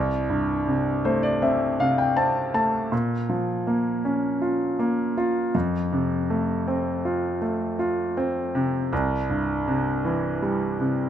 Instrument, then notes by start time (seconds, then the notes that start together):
grand piano
Already playing: C2
0.30 G2
0.67 C3
1.05 A3 C5
1.23 D5
1.42 C4 E5
1.80 C3 F5
1.98 G5
2.17 C4 A5
2.54 A3 A5
2.92 A#2
3.29 F3
3.67 A#3
4.05 C#4
4.42 F4
4.79 A#3
5.18 F4
5.55 F2
5.92 C3
6.30 A3
6.68 C4
7.05 F4
7.42 A3
7.79 F4
8.17 C4
8.55 C3
8.93 C2
9.30 G2
9.68 C3
10.05 E3
10.42 G3
10.80 C3